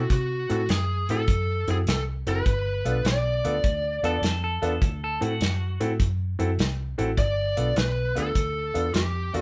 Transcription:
0.00 F#4
0.10 C3 F#4, kick, closed hi-hat
0.49 A2 C4 E4 F#4 A4, closed hi-hat
0.69 F#2 G#4, snare, closed hi-hat
1.09 A2 C4 E4 F#4 A4, closed hi-hat
1.28 F#2, kick, closed hi-hat
1.68 F#2 C4 E4 F#4 G#4 A4, closed hi-hat
1.87 C2 A4, snare, closed hi-hat
2.26 F#1 C4 E4 F#4 A4 B4, closed hi-hat
2.46 G1, kick, closed hi-hat
2.85 B1 B3 D4 F4 A4, closed hi-hat
3.05 B1 D5, snare, closed hi-hat
3.44 D2 B3 D4 F4 A4, closed hi-hat
3.64 D2, kick, closed hi-hat
4.03 E2 B3 D4 F4 A4, closed hi-hat
4.22 F2, snare, closed hi-hat
4.44 A4
4.62 E2 B3 D4 F4 A4, closed hi-hat
4.82 D2, kick, closed hi-hat
5.04 A4
5.21 A2 C4 E4 F#4 A4, closed hi-hat
5.41 F#2, snare, closed hi-hat
5.80 A2 C4 E4 F#4 A4, closed hi-hat
6.00 F#2, kick, closed hi-hat
6.39 F#2 C4 E4 F#4 A4, closed hi-hat
6.58 C2, snare, closed hi-hat
6.98 A1 C4 E4 F#4 A4, closed hi-hat
7.17 G1 D5, kick, closed hi-hat
7.57 B1 B3 D4 F4 A4, closed hi-hat
7.76 B1 B4, snare, closed hi-hat
8.15 D2 B3 D4 F4 A4, closed hi-hat
8.35 D2, kick, closed hi-hat
8.74 E2 B3 D4 F4 A4, closed hi-hat
8.94 F2 G4, snare, closed hi-hat
9.34 E2 B3 D4 F4 A4, closed hi-hat

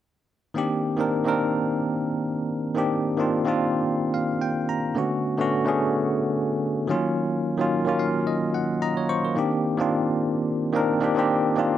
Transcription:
0.54 D#3 A#3 C4 D4 G4
0.97 D#3 A#3 C4 D4 A#4
1.25 D#3 A#3 C4 D4 A#4
2.75 D#3 A#3 C4 D4 G4
3.17 D#3 A#3 C4 D4 F4
3.45 D#3 A#3 C4 D4 F4
4.14 F5
4.41 G5
4.69 A#5
4.95 D3 A3 B3 C#4 F#4
5.37 D3 A3 B3 C#4 F#4
5.65 D3 A3 B3 C#4 G#4
6.87 D#3 F#3 A#3 C#4 F4
7.58 D#3 F#3 A#3 C#4 F4
7.85 D#3 F#3 A#3 C#4 F4
7.99 F5
8.27 D#5
8.54 F#5
8.82 D#5 A#5
8.97 C#5
9.09 C5 C#6
9.25 A#4
9.35 D#3 A#3 C4 D4 G4
9.78 D#3 A#3 C4 D4 F4
10.73 D#3 A#3 C4 D4 A#4
11.00 D#3 A#3 C4 D4 G4
11.15 D#3 A#3 C4 D4 G4
11.55 D#3 A#3 C4 D4 F4

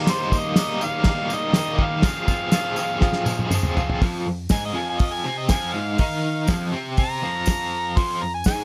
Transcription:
0.07 D#3 G3 A#3 D#4 G4 C5, snare, tambourine, crash
0.32 A#3 D#4 G4, kick, tambourine
0.38 D#5
0.55 G3 A#3 D#4 G4, snare, tambourine, crash
0.80 D#3 G3 A#3 D#4 G4 F5, tambourine
1.04 G3 A#3 D#4 G4, kick, snare, tambourine, crash
1.28 A#3 D#4 G4, tambourine
1.35 D#5
1.52 D#3 G3 A#3 D#4, snare, tambourine, crash
1.57 G4
1.77 A#3 D#4 G4, kick
1.84 F5
2.02 F3 C4 F4 G#4, kick, snare, tambourine, crash
2.27 F4 G#4, kick, tambourine
2.31 C4
2.52 F3 C4 F4 G#4, snare, tambourine, crash
2.76 C4 F4 G#4, tambourine
2.81 F3
2.99 F3 C4 F4 G#4, kick, snare, tambourine
3.13 snare
3.25 C4 F4 G#4, high tom, tambourine
3.39 high tom
3.50 F3 C4 F4 G#4, mid tom, tambourine
3.63 mid tom
3.76 C4 F4 G#4, floor tom, tambourine
3.90 floor tom
4.02 F2 F3, kick, open hi-hat
4.26 F2
4.49 G#2 G#3 G#5, kick, snare, open hi-hat, tambourine
4.65 D#5
4.73 F2 F3
4.78 G#5
4.89 G#5
4.99 D#5, kick, open hi-hat
5.13 G#5
5.24 C3 C4 G#5
5.38 D#5
5.49 F2 F3 G#5, kick, snare, open hi-hat, tambourine
5.72 G#2 G#3 F5
5.98 D#3 D#4, kick, open hi-hat
6.47 F2 F3, kick, snare, open hi-hat, tambourine
6.72 C3 C4
6.97 A#5, kick, open hi-hat
7.22 F2 F3
7.46 kick, snare, open hi-hat, tambourine
7.96 F2 F3 C6, kick, open hi-hat
8.22 F2 A#5
8.34 G#5
8.44 G#2 G#3 G#5, kick, snare, open hi-hat, tambourine

